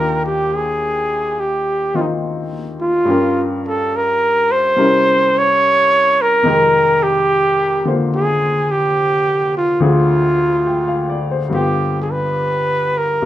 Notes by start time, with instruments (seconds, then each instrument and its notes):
Already playing: upright piano D#2 D#3 D4 F4 A#4 G5, trumpet A#4
0.26 trumpet G4
0.54 trumpet G#4
1.40 trumpet G4
1.94 upright piano D#3 C4 D#4 F4, trumpet F4
2.01 trumpet D#4
2.81 trumpet F4
3.05 upright piano G2 G3 C#4
3.09 upright piano F4 A#4
3.68 trumpet A4
3.96 trumpet A#4
4.51 trumpet C5
4.76 upright piano C3 G3 C#4 E4 A#4
5.38 trumpet C#5
6.21 trumpet A#4
6.43 upright piano F2 C3 D#3 G#3
6.47 upright piano A#4 G5
7.03 trumpet G4
7.85 upright piano D3 A#3 F4 C5
8.16 trumpet G#4
8.71 trumpet G4
9.57 trumpet F4
9.80 upright piano D2 D3 C4 F4 G#4
9.87 trumpet F4
10.66 upright piano G5
10.88 upright piano F5
11.10 upright piano D5
11.31 upright piano C5
11.49 upright piano G2 D3 B3 F4
11.54 trumpet G4, upright piano G4
12.02 trumpet G#4
12.11 trumpet B4
12.98 trumpet A#4
13.22 upright piano C2 G2